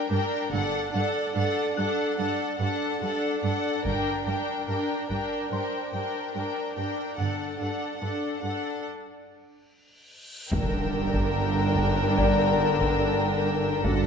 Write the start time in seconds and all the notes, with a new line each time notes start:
Already playing: A#4
0.11 G2 D4 A#4 G5
0.52 G1 G2 D4 A4 F#5
0.93 G2 D4 A4 F#5
1.35 G2 D4 A4 F#5
1.76 G2 D4 A4 F#5 F#6
2.18 G2 D4 A4 F#5
2.60 G2 D4 A4 F#5
3.02 G2 D4 A4 F#5
3.43 G2 D4 A4 F#5
3.85 G1 G2 D4 A#4 G5, taiko
4.26 G2 D4 A#4 G5
4.68 G2 D4 A#4 G5
5.09 G2 D4 A#4 G5, taiko
5.51 G2 D4 A#4 C5 G5 C6
5.93 G2 D4 A#4 G5
6.34 G2 D4 A#4 G5
6.75 G2 D4 A#4 G5
7.17 G1 G2 D4 A4 F#5, reverse cymbal
7.59 G2 D4 A4 F#5
7.99 G2 A4 F#5
8.03 D4
8.42 G2 D4 A4 F#5
10.50 G1 G2 D3 D4 A#4 G5 E6 A#6, taiko, impact
11.14 taiko
11.76 taiko
12.17 D5, taiko
12.81 taiko
13.84 G1 G2 D3 D4 F#4 A4 F#5, taiko